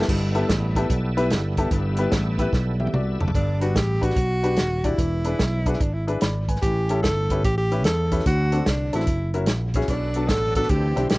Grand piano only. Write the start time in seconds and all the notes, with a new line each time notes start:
0.09 G2
0.35 B3 E4 G4 A4
0.76 B3 E4 G4 A4
1.17 B3 E4 G4 B4
1.58 B3 E4 G4 A4
1.72 G2
1.99 B3 E4 G4 B4
2.39 B3 E4 G4 B4
2.80 G4 E5
2.94 F#4 D5
3.20 A4
3.35 G2
3.61 D4 F#4 G4 B4
4.01 D4 F#4 G4 B4
4.43 D4 F#4 G4 B4
4.84 D4 F#4 G4 D5
4.98 E3
5.25 D4 E4 G#4 B4
5.66 D4 E4 G#4 B4
6.07 D4 E4 G#4 B4
6.22 D5 B5
6.49 B4 G#5
6.63 A2
6.90 C#4 E4 G4 A4
7.31 C#4 E4 G4 B4
7.72 C#4 E4 G4 B4
8.12 C#4 E4 G4 B4
8.26 D3
8.52 C4 D4 F#4 A4
8.93 C4 D4 F#4 A4
9.34 C#4 E4 F#4 A#4
9.75 C#4 E4 F#4 G#4
9.90 B2
10.16 B3 D4 F#4 A4
10.56 B3 D4 F#4 A4
10.71 D3
10.96 C4 D4 E4 G4